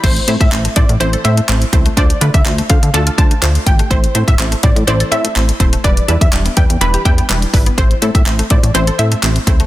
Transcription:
<<
  \new Staff \with { instrumentName = "Synth pluck" } { \time 4/4 \key a \minor \tempo 4 = 124 c''8 r16 e''8 r16 d''16 r16 c''8 e''16 r4 r16 | d''8 r16 e''8 r16 f''16 r16 a''8 a''16 r8. g''16 r16 | c''8 r16 e''8 r16 d''16 r16 c''8 e''16 r4 r16 | d''8 r16 e''8 r16 g''16 r16 b''8 g''16 r4 r16 |
c''8 r16 e''8 r16 d''16 r16 c''8 e''16 r4 r16 | }
  \new Staff \with { instrumentName = "Synth pluck" } { \time 4/4 \key a \minor <a c' e' c''>8 <a c' e' c''>8 <a c' e' c''>8 <a c' e' c''>8 <a c' e' c''>8 <a c' e' c''>8 <a c' e' c''>8 <a c' e' c''>8 | <a d' f' c''>8 <a d' f' b'>8 <a d' f' c''>8 <a d' f' c''>8 <a d' f' a'>8 <a d' f' c''>8 <a d' f' c''>8 <a d' f' g'>8 | <a c' e' c''>8 <a c' e' c''>8 <a c' e' c''>8 <a c' e' c''>8 <a c' e' d''>8 <a c' e' a'>8 <a c' e' c''>8 <a c' e' c''>8 | <g d' e' b'>8 <g d' e' b'>8 <g d' e' g'>8 <g d' e' b'>8 <g d' e' b'>8 <g d' e' b'>8 <g d' e' b'>8 <g d' e' b'>8 |
<a c' e' c''>8 <a c' e' a'>8 <a c' e' c''>8 <a c' e' c''>8 <a c' e' c''>8 <a c' e' c''>8 <a c' e' c''>8 <a c' e' c''>8 | }
  \new Staff \with { instrumentName = "Synth arpeggio sound" } { \time 4/4 \key a \minor e16 r16 e''16 r8 a16 e16 e16 e16 a'16 e''16 a16 r8. a16 | d16 r16 d''16 r8 a16 d16 d16 d16 f'16 d''16 a16 r8. a16 | e16 r16 e''16 r8 a16 e16 e16 e16 a'16 e''16 a16 r8. a16 | e16 r16 e''16 r8 b16 e16 e16 e16 g'16 e''16 b16 r8. b16 |
e16 r16 e''16 r8 a16 e16 e16 e16 a'16 e''16 a16 r8. a16 | }
  \new Staff \with { instrumentName = "Analog synth bass" } { \clef bass \time 4/4 \key a \minor a,,8 a,16 a,16 a,,8 a,16 a,16 a,,8 a,8 a,,8 cis,8 | d,8 d16 d16 d,8 d16 d16 d,8 d8 d,8 gis,,8 | a,,8 a,16 a,16 a,,8 a,16 a,16 a,,8 a,8 a,,8 dis,,8 | e,,8 e,16 e,16 e,,8 e,16 e,16 e,,8 e,8 e,,8 gis,,8 |
a,,8 a,16 a,16 a,,8 a,16 a,16 a,,8 a,8 a,,8 cis,8 | }
  \new DrumStaff \with { instrumentName = "Drums" } \drummode { \time 4/4 <cymc hh bd>16 hh16 hh16 <hh bd>16 <hc hh>16 hh16 <hh bd>16 hh16 hh16 hh16 hh16 hh16 <hc hh>16 hh16 <hh bd>16 hh16 | <hh bd>16 hh16 hh16 <hh bd>16 <hc hh>16 hh16 <hh bd>16 hh16 hh16 hh16 <hh bd>16 hh16 <hc hh>16 hh16 <hh bd>16 hh16 | <hh bd>16 hh16 hh16 <hh bd>16 <hc hh>16 hh16 <hh bd>16 hh16 hh16 hh16 hh16 hh16 <hc hh>16 hh16 <hh bd>16 hh16 | <hh bd>16 hh16 hh16 <hh bd>16 <hc hh>16 hh16 <hh bd>16 hh16 hh16 hh16 <hh bd>16 hh16 <hc hh>16 hh16 <hho bd>16 hh16 |
<hh bd>16 hh16 hh16 <hh bd>16 <hc hh>16 hh16 <hh bd>16 hh16 hh16 hh16 hh16 hh16 <hc hh>16 hh16 <hh bd>16 hh16 | }
>>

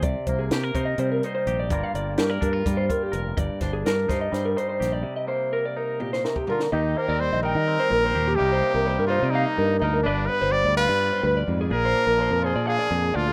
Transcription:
<<
  \new Staff \with { instrumentName = "Clean electric guitar" } { \time 7/8 \key c \minor \tempo 4 = 126 d''8 c''16 aes'16 bes'8 c''16 ees''16 c''16 bes'16 c''16 c''8 d''16~ | d''16 f''16 d''8 bes'16 d''16 bes'8 g'16 c''16 bes'16 g'16 bes'8 | d''8 c''16 aes'16 bes'8 c''16 ees''16 c''16 bes'16 c''16 c''8 d''16~ | d''16 ees''16 c''8 bes'16 d''16 bes'8 g'16 c''16 bes'16 g'16 bes'8 |
ees''8 c''16 d''8 ees''16 g''16 ees''8 c''16 bes'16 c''8 g'16~ | g'16 c''8 bes'16 c''16 bes'16 c''16 d''16 f''16 ees''16 bes'8 ees''16 bes'16 | d''8 b'16 c''8 d''16 f''16 d''8 c''16 b'16 d''8 aes'16~ | aes'16 c''8 bes'16 c''16 bes'16 c''16 d''16 f''16 d''16 aes'8 d''16 aes'16 | }
  \new Staff \with { instrumentName = "Trumpet" } { \time 7/8 \key c \minor r2. r8 | r2. r8 | r2. r8 | r2. f'8 |
ees'8 bes'8 c''8 bes'2 | g'4. f'8 ees'4 ees'8 | d'8 b'8 d''8 b'4. r8 | bes'4. aes'8 aes'4 f'8 | }
  \new Staff \with { instrumentName = "Clean electric guitar" } { \time 7/8 \key c \minor << { r8 bes8 g'16 bes'16 ees'4 ees'8 g'8 | <g bes f' bes'>8 bes8 g'16 bes'16 d'16 f'8. f'8 bes'8 | r8 d'8 bes'8 ees'4 ees'8 g'8~ | g'8 bes8 bes'8 ees'2 |
g'8 bes16 c'8. ees'8 c'4 g'8 | <g bes ees'>8 bes4 ees'8 bes4 bes'8 | b'8 b4 f'2 | aes'8 d'4 f'8 d'4 d'8 | } \\ { c2 g4. | g,2 g4. | g,2 g4. | c2 bes,8 c8 d8 |
ees4 g4. bes,4 | c4 g4. g,4 | g,4 g4. g,8 aes,8 | bes,4 f4. bes,4 | } >> }
  \new Staff \with { instrumentName = "Fingered electric bass" } { \clef bass \time 7/8 \key c \minor c,16 r16 c,8 c8 c8 c8 r8 bes,,8 | g,,16 r16 g,,8 g,8 g,8 g,8 r8 f,,8 | g,,16 r16 g,,8 g,8 g,8 g,8 r8 bes,,8 | r2. r8 |
ees,8 r16 ees,8 bes,,8 ees8 r16 bes,,8 ees,8 | c,8 r16 c,8 g,8 c8 r16 g,8 d,8 | g,,8 r16 g,,8 d,8 g,8 r16 d,8 f,8 | bes,,8 r16 bes,,8 f,8 bes,8 r16 f,8 d,8 | }
  \new DrumStaff \with { instrumentName = "Drums" } \drummode { \time 7/8 <hh bd>8 <hh bd>8 <hh sn>8 <hh bd>8 hh8 hh8 hh8 | <hh bd>8 hh8 <hh sn>8 <hh bd>8 <hh bd>8 <hh bd>8 hh8 | <hh bd>8 <hh bd sn>8 <hh sn>8 <hh bd sn>8 <hh sn>8 hh8 <hh sn>8 | r4 r4 tommh16 sn16 sn16 bd16 tomfh16 sn16 |
r4 r4 r4. | r4 r4 r4. | r4 r4 r4. | r4 r4 r4. | }
>>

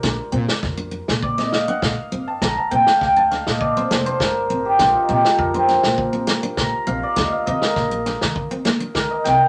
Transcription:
<<
  \new Staff \with { instrumentName = "Hammered dulcimer" } { \time 4/4 \key bes \major \tempo 4 = 101 d''8 r4. d''16 ees''16 f''16 ges''16 f''8. a''16 | bes''16 a''16 g''16 f''16 g''16 a''16 f''16 ees''16 d''16 c''16 a'16 c''16 bes'8. g'16 | f'16 ees'16 g'16 a'16 bes'16 c'16 r4. bes''8 f''16 d''16 | ees''16 f''16 ees''16 bes'4 r4 r16 bes'16 ees''16 g''16 bes''16 | }
  \new Staff \with { instrumentName = "Steel-string acoustic guitar" } { \time 4/4 \key bes \major d'8 c'8 r16 d'16 d'8 r16 c'16 r16 d'8 r16 c'8 | r8 c'8 r16 d'16 d'8 r16 c'16 bes16 d'8 r16 c'8 | d'8 c'8 r16 d'16 d'8 r16 c'16 r16 d'8 r16 c'8 | d'8 c'8 r16 d'16 d'8 r16 c'16 bes16 d'8 r16 c'8 | }
  \new Staff \with { instrumentName = "Upright bass" } { \clef bass \time 4/4 \key bes \major bes,,16 r16 bes,16 r16 f,8. bes,4~ bes,16 bes,16 r16 g,,16 r16 | bes,,16 r16 bes,16 r16 d,8. bes,8. f,,8 g,,8 a,,8 | bes,,16 r16 bes,16 r16 f,8. bes,4~ bes,16 bes,16 r16 bes,,16 r16 | ees,16 r16 ees16 r16 bes,,8. ees4~ ees16 ees16 r16 c,16 r16 | }
  \new DrumStaff \with { instrumentName = "Drums" } \drummode { \time 4/4 <bd sn>8. sn16 <bd sn>8. sn16 bd16 sn16 sn8 <bd sn>4 | <bd sn>8. sn16 <bd sn>8 sn16 sn16 bd8 sn8 <bd sn>4 | <bd sn>8. sn16 bd8 sn16 sn16 bd8 sn8 <bd sn>4 | <bd sn>8. sn16 <bd sn>8 sn16 sn16 bd8 sn8 <bd sn>8 sn8 | }
>>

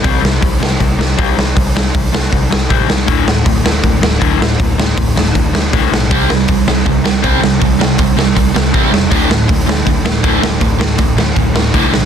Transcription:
<<
  \new Staff \with { instrumentName = "Distorted electric guitar" } { \clef bass \time 4/4 \key c \lydian \tempo 4 = 159 r1 | r1 | r1 | r1 |
<c g c'>8 <c g>8 <c g>8 <c g>8 <c g>8 <c g>8 <c g c'>8 <c g>8 | <c g>8 <c g>8 <c g>8 <c g>8 <c g>8 <c g>8 <c g c'>8 <c g>8 | <d, a, d>8 <d, a,>8 <d, a,>8 <d, a,>8 <d, a,>8 <d, a,>8 <d, a, d>8 <d, a,>8 | <d, a,>8 <d, a,>8 <d, a,>8 <d, a,>8 <d, a,>8 <d, a,>8 <d, a, d>8 <d, a,>8 | }
  \new Staff \with { instrumentName = "Overdriven electric guitar" } { \clef bass \time 4/4 \key c \lydian <c g c'>8 <c g>8 <c g>8 <c g>8 <c g>8 <c g>8 <c g c'>8 <c g>8 | <c g>8 <c g>8 <c g>8 <c g>8 <c g>8 <c g>8 <c g c'>8 <c g>8 | <d, a, d>8 <d, a,>8 <d, a,>8 <d, a,>8 <d, a,>8 <d, a,>8 <d, a, d>8 <d, a,>8 | <d, a,>8 <d, a,>8 <d, a,>8 <d, a,>8 <d, a,>8 <d, a,>8 <d, a, d>8 <d, a,>8 |
<c g c'>8 <c g>8 <c g>8 <c g>8 <c g>8 <c g>8 <c g c'>8 <c g>8 | <c g>8 <c g>8 <c g>8 <c g>8 <c g>8 <c g>8 <c g c'>8 <c g>8 | <d, a, d>8 <d, a,>8 <d, a,>8 <d, a,>8 <d, a,>8 <d, a,>8 <d, a, d>8 <d, a,>8 | <d, a,>8 <d, a,>8 <d, a,>8 <d, a,>8 <d, a,>8 <d, a,>8 <d, a, d>8 <d, a,>8 | }
  \new Staff \with { instrumentName = "Picked electric bass" } { \clef bass \time 4/4 \key c \lydian c,8 c,8 c,8 c,8 c,8 c,8 c,8 c,8 | c,8 c,8 c,8 c,8 c,8 c,8 a,,8 c,8 | d,,8 d,,8 d,,8 d,,8 d,8 d,,8 d,,8 d,,8 | d,,8 d,,8 d,,8 d,,8 d,,8 d,,8 c,8 b,,8 |
c,8 c,8 c,8 c,8 c,8 c,8 c,8 c,8 | c,8 c,8 c,8 c,8 c,8 c,8 a,,8 e,,8 | d,,8 d,,8 d,,8 d,,8 d,8 d,,8 d,,8 d,,8 | d,,8 d,,8 d,,8 d,,8 d,,8 d,,8 c,8 b,,8 | }
  \new DrumStaff \with { instrumentName = "Drums" } \drummode { \time 4/4 <hho bd>8 sn8 <hho bd>8 sn8 <hho bd>8 sn8 <hho bd>8 sn8 | <hho bd>8 sn8 <hho bd>8 sn8 <hho bd>8 sn8 <hho bd>8 sn8 | <hho bd>8 sn8 <hho bd>8 sn8 <hho bd>8 sn8 <hho bd>8 sn8 | <hho bd>8 sn8 <hho bd>8 sn8 <hho bd>8 sn8 <hho bd>8 sn8 |
<hho bd>8 sn8 <hho bd>8 sn8 <hho bd>8 sn8 <hho bd>8 sn8 | <hho bd>8 sn8 <hho bd>8 sn8 <hho bd>8 sn8 <hho bd>8 sn8 | <hho bd>8 sn8 <hho bd>8 sn8 <hho bd>8 sn8 <hho bd>8 sn8 | <hho bd>8 sn8 <hho bd>8 sn8 <hho bd>8 sn8 <hho bd>8 sn8 | }
>>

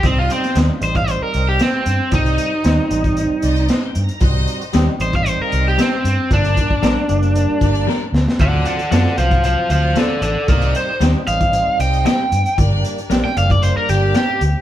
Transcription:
<<
  \new Staff \with { instrumentName = "Overdriven electric guitar" } { \time 4/4 \key c \dorian \tempo 4 = 115 c'16 f'16 c'8 r8 c''16 f''16 c''16 bes'8 g'16 c'4 | ees'2. r4 | r4. c''16 f''16 c''16 bes'8 g'16 c'4 | d'2. r4 |
<d'' fis''>8 <d'' fis''>8 <d'' fis''>8 <c'' eis''>8 <c'' eis''>8 <c'' eis''>8 <a' d''>8 <a' d''>8 | <bes' d''>8 c''8 r8 f''4 g''8 g''4 | r4 r16 g''16 f''16 d''16 c''16 bes'16 g'8 g'8 r8 | }
  \new Staff \with { instrumentName = "String section" } { \time 4/4 \key c \dorian <ees' g' c'' ees''>4 r4. <ees' g' c'' ees''>8. r8. | <ees' g' c'' ees''>4 r4. <ees' g' c'' ees''>8. r8. | <ees' c'' ees''>4 r4. <ees' g' c'' ees''>8. r8. | <d' g' bes' d''>4 r4. <d' g' bes' d''>8. r8. |
<eis' c'' d''>4 r4. <eis' c'' d''>8. r8. | <ees' g' c'' ees''>4 r4. <ees' g' c'' ees''>8. r8. | <d' g' bes' d''>4 r4. <d' g' bes' d''>8. r8. | }
  \new Staff \with { instrumentName = "Clean electric guitar" } { \time 4/4 \key c \dorian r1 | r1 | r4 <g c' ees' g'>8 r4. <g c' ees' g'>8 r8 | r4 <g bes d' bes'>8 r4. <g bes d' bes'>8 r8 |
r4 <fis c' eis' a'>8 r4. <fis c' eis' a'>8 r8 | r4 <g c' ees' g'>8 r4. <g c' ees' g'>8 r8 | r4 <bes d' g'>8 r4. <bes d' g'>8 r8 | }
  \new Staff \with { instrumentName = "Tonewheel organ" } { \time 4/4 \key c \dorian << { r1 | r2 r8 d''8 \tuplet 3/2 { ees''8 g''8 bes''8 } | r1 | r1 |
r1 | r1 | r1 | } \\ { <g c' ees'>4 <g c' ees'>8 <g c' ees'>4. r4 | <g c' ees'>4 <g c' ees'>8 <g c' ees'>4. r4 | <g c' fis'>4 <g c' ees'>8 <g c' ees'>4. r4 | <g bes d'>4 <g bes d'>8 <g bes d'>4. r4 |
<fis c' eis'>4 <fis c' eis'>8 <fis c' eis'>4. r4 | <g c' ees'>4 <g c' ees'>8 <g c' ees'>4. r4 | <g bes d'>4 <g bes d'>8 <g bes d'>4. r4 | } >> }
  \new Staff \with { instrumentName = "Fingered electric bass" } { \clef bass \time 4/4 \key c \dorian c,8 r8 ees,16 r16 a,,8. r16 c,8 r8 g,16 r16 | c,8 r8 ees,16 r16 a,,8. r16 c,8 r8 g,16 r16 | c,8 r8 ees,16 r16 a,,8. r16 c,8 r8 g,16 r16 | g,,8 r8 bes,,16 r16 fis,,8. r16 g,,8 r8 d,16 r16 |
d,8 r8 fis,16 r16 c,8. r16 d,8 r8 a,,16 r16 | c,8 r8 ees,16 r16 a,,8. r16 c,8 r8 g,16 r16 | g,,8 r8 bes,,16 r16 fis,,8. r16 g,,8 r8 d,16 r16 | }
  \new DrumStaff \with { instrumentName = "Drums" } \drummode { \time 4/4 <hh bd>8 hh16 <hh sn>16 <hh sn>8 hh16 <hh bd>16 hh8 hh8 <hh sn>8 hh8 | <hh bd>16 hh16 hh8 <hh sn>8 hh16 <hh bd>16 hh8 hh16 hh16 <hh sn>8 hh16 hh16 | <hh bd>8 hh16 hh16 <hh sn>8 hh16 <hh bd>16 hh8 hh8 <hh sn>8 hh8 | <hh bd>16 hh16 <hh bd>16 bd16 <hh sn>8 hh16 hh16 hh8 <hh bd>16 hh16 sn8 sn16 sn16 |
<hh bd>8 hh16 hh16 <hh sn>16 sn16 hh16 <hh bd>16 hh8 hh8 <hh sn>8 hh8 | <hh bd>16 hh16 hh8 <hh sn>8 hh16 <hh bd>16 hh8 hh16 hh16 <hh sn>8 hh16 hh16 | <hh bd>8 hh16 hh16 <hh sn>16 sn16 hh16 <hh bd>16 hh8 hh8 <hh sn>8 hh8 | }
>>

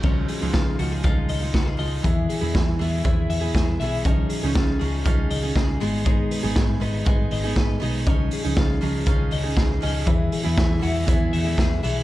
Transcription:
<<
  \new Staff \with { instrumentName = "Clean electric guitar" } { \time 4/4 \key cis \mixolydian \tempo 4 = 119 cis'8 gis'8 eis'8 fis'16 gis'16 eis'8 dis''8 fis'16 gis'16 dis''8 | e8 gis'8 e'8 gis'8 e'8 e''8 gis'8 e''8 | cis'8 gis'8 eis'8 gis'8 eis'8 dis''8 gis'8 gis8 | gis8 b'8 gis'8 b'8 gis'8 dis''8 b'8 dis''8 |
cis'8 gis'8 eis'8 gis'8 eis'8 dis''8 gis'8 dis''8 | e8 gis'8 e'8 fis'16 gis'16 e'8 e''8 gis'8 e''8 | }
  \new Staff \with { instrumentName = "Steel-string acoustic guitar" } { \time 4/4 \key cis \mixolydian <eis gis dis' eis'>8. <cis eis gis dis' eis'>8. <eis gis dis' eis'>8 <eis gis dis' eis'>8. <gis dis' eis'>8. <eis gis dis' eis'>8 | <e b e' gis'>8. <e b e' gis'>8. <e b e' gis'>8 <e b e' gis'>8. <b e' gis'>8. <e b e' gis'>8 | <eis cis' dis' gis'>8. <cis eis cis' dis' gis'>8. <eis cis' dis' gis'>8 <eis cis' dis' gis'>8. <cis' dis' gis'>8. <gis b dis' gis'>8 | <gis b dis' gis'>8. <gis b dis' gis'>8. <gis b dis' gis'>8 <gis b dis' gis'>8. <b dis' gis'>8. <gis b dis' gis'>8 |
<eis cis' dis' gis'>8. <cis eis cis' dis' gis'>8. <eis cis' dis' gis'>8 <eis cis' dis' gis'>8. <cis' dis' gis'>8. <eis cis' dis' gis'>8 | <e b e' gis'>8. <e b e' gis'>8. <e b e' gis'>8 <e b e' gis'>8. <b e' gis'>8. <e b e' gis'>8 | }
  \new Staff \with { instrumentName = "Picked electric bass" } { \clef bass \time 4/4 \key cis \mixolydian cis,8 r16 cis,16 cis,8 cis,8 cis,8 cis,8 cis,8 cis,8 | e,8 r16 e,16 e,8 e,8 e,8 e,8 e,8 b,,8 | cis,8 r16 cis,16 r8 cis,8 cis,8 cis,8 cis,8 gis,,8~ | gis,,8 r16 gis,,16 gis,,8 gis,,8 gis,,8 gis,,8 gis,,8 b,,8 |
cis,8 r16 cis,16 cis,8 cis,8 cis,8 cis,8 cis,8 cis,8 | e,8 r16 e,16 e,8 e,8 e,8 e,8 e,8 b,,8 | }
  \new DrumStaff \with { instrumentName = "Drums" } \drummode { \time 4/4 <hh bd>8 hho8 <hh bd sn>8 hho8 <hh bd>8 hho8 <hh bd sn>8 hho8 | <hh bd>8 hho8 <hh bd sn>8 hho8 <hh bd>8 hho8 <hh bd sn>8 hho8 | <hh bd>8 hho8 <hh bd sn>8 hho8 <hh bd>8 hho8 <hh bd sn>8 hho8 | <hh bd>8 hho8 <hh bd sn>8 hho8 <hh bd>8 hho8 <hh bd sn>8 hho8 |
<hh bd>8 hho8 <bd sn>8 hho8 <hh bd>8 hho8 <hh bd sn>8 hho8 | <hh bd>8 hho8 <hh bd sn>8 hho8 <hh bd>8 hho8 <hh bd sn>8 hho8 | }
>>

